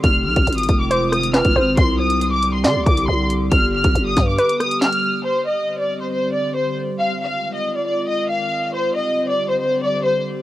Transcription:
<<
  \new Staff \with { instrumentName = "Violin section" } { \time 4/4 \key c \minor \tempo 4 = 138 f'''8 f'''8. ees'''8 d'''16 d'''8 ees'''8 f'''4 | c'''8 ees'''8. d'''8 c'''16 c'''8 d'''8 c'''8 r8 | f'''8 f'''8. ees'''8 d'''16 d'''8 ees'''8 f'''4 | c''8 ees''8. d''8 c''16 c''8 d''8 c''8 r8 |
f''8 f''8. ees''8 d''16 d''8 ees''8 f''4 | c''8 ees''8. d''8 c''16 c''8 d''8 c''8 r8 | }
  \new Staff \with { instrumentName = "Synth pluck" } { \time 4/4 \key c \minor r2 c''4 b'8 c''8 | r2 d''4 r4 | r2 b'2 | r1 |
r1 | r1 | }
  \new Staff \with { instrumentName = "Ambient pad" } { \clef bass \time 4/4 \key c \minor << { <ees aes f'>1 | <d g g'>1~ | <d g g'>1 | <d g g'>1 |
<ees aes f'>1 | <d g g'>1 | } \\ { c'1~ | c'1 | b1 | c'1 |
c'1~ | c'1 | } >> }
  \new Staff \with { instrumentName = "808-style bass" } { \clef bass \time 4/4 \key c \minor f,,8 c,16 aes,,16 aes,,8 f,,4.~ f,,16 f,,16 aes,,8 | c,2 ees16 c,16 c,8 c,4 | g,,8. g,,16 g,,8 g,8 r2 | r1 |
r1 | r1 | }
  \new DrumStaff \with { instrumentName = "Drums" } \drummode { \time 4/4 <hh bd>8. <hh bd>16 hh32 hh32 hh32 hh32 <hh bd>8 hh8 <hh ss>16 hh16 <hc sn>16 <hh bd>8. | <hh bd>8. hh16 hh8 hh8 <hc sn>8 <hh bd>16 hh16 r8 hh8 | <hh bd>8. <hh bd>16 hh8 <hh bd sn>8 hh16 hh16 <hh ss>16 hh16 <hc sn>16 hh8. | r4 r4 r4 r4 |
r4 r4 r4 r4 | r4 r4 r4 r4 | }
>>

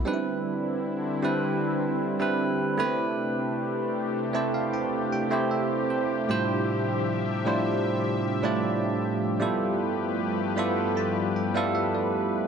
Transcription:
<<
  \new Staff \with { instrumentName = "Tine electric piano" } { \time 4/4 \key c \major \tempo 4 = 77 << { r1 | r4. a''16 f''16 g''8 g''8 e''8 c''8 | r1 | r4. b''8 a''8 g''16 f''16 e''16 d''8. | } \\ { <g c' d' ees' e' b'>4. <g c' d' e' b'>4~ <g c' d' e' b'>16 <g c' d' e' b'>8. <a b c' e' g' b'>8~ | <a b c' e' g' b'>4. <a c' e' g' c''>4~ <a c' e' g' c''>16 <a c' e' g' c''>4~ <a c' e' g' c''>16 | <a, g d' e' f' c''>4. <a, g d' e' f' c''>4~ <a, g d' e' f' c''>16 <a, g d' e' f' d''>4~ <a, g d' e' f' d''>16 | <g b e' f' a'>4. <g b e' f' a'>4~ <g b e' f' a'>16 <g b e' f' a'>4~ <g b e' f' a'>16 | } >> }
  \new Staff \with { instrumentName = "Analog synth pad" } { \time 4/4 \key c \major << { <c' d'>2.~ <c' d'>8 a8~ | a1 | <f e''>1 | <g, a b'>1 | } \\ { <d e'>2.~ <d e'>8 <c g'>8~ | <c g'>1~ | <c g'>1 | <f g'>1 | } >> }
>>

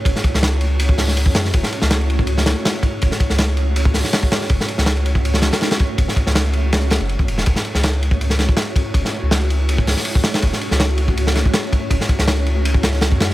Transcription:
<<
  \new Staff \with { instrumentName = "Sub bass" } { \clef bass \time 4/4 \key fis \minor \tempo 4 = 162 fis,,16 r8 cis,2~ cis,8 fis,16 fis,8 | fis,,16 r8 cis,2 r4 r16 | fis,,16 r8 cis,2 r4 r16 | fis,,16 r8 cis,2 r4 r16 |
fis,,16 r8 cis,2 fis,,8 a,,16 e,,8 | fis,,16 r8 cis,2 r4 r16 | fis,,16 r8 cis,2 r4 r16 | fis,,16 r8 cis,2 r4 r16 |
fis,,16 r8 cis,2~ cis,8 fis,16 fis,8 | }
  \new DrumStaff \with { instrumentName = "Drums" } \drummode { \time 4/4 <bd cymr>16 sn16 <bd cymr>16 sn16 <cymr sn>8 cymr8 cymr16 bd16 <hho sn>16 sn16 cymr16 bd16 <cymr sn>16 sn16 | <bd cymr>16 sn16 cymr16 sn16 <cymr sn>16 cymr16 cymr16 bd16 cymr16 sn16 <cymr sn>16 cymr16 <cymr sn>8 <bd cymr>8 | <bd cymr>16 sn16 <bd cymr>16 sn16 <cymr sn>8 cymr8 cymr16 bd16 <hho sn>16 sn16 <cymr sn>16 bd16 <cymr sn>16 sn16 | <bd cymr>16 sn16 cymr16 sn16 <cymr sn>16 cymr16 cymr16 bd16 cymr16 sn16 <cymr sn>16 <cymr sn>16 <cymr sn>16 <cymr sn>16 <bd cymr>8 |
<bd cymr>16 sn16 <bd cymr>16 sn16 <cymr sn>8 cymr8 <cymr sn>16 cymr16 <cymr sn>16 cymr16 cymr16 bd16 cymr16 sn16 | <bd cymr>16 sn16 cymr16 sn16 <cymr sn>16 cymr16 cymr16 bd16 cymr16 sn16 <cymr sn>16 bd16 <cymr sn>8 <bd cymr>8 | <bd cymr>16 sn8. <cymr sn>8 cymr8 cymr16 bd16 <hho sn>16 sn16 cymr16 bd16 <cymr sn>16 <cymr sn>16 | <bd cymr>16 sn16 cymr16 sn16 <cymr sn>16 cymr16 cymr16 bd16 cymr16 sn16 <cymr sn>16 bd16 <cymr sn>8 <bd cymr>8 |
<bd cymr>16 sn16 <bd cymr>16 sn16 <cymr sn>8 cymr8 cymr16 bd16 <cymr sn>16 sn16 <cymr sn>16 bd16 <cymr sn>16 sn16 | }
>>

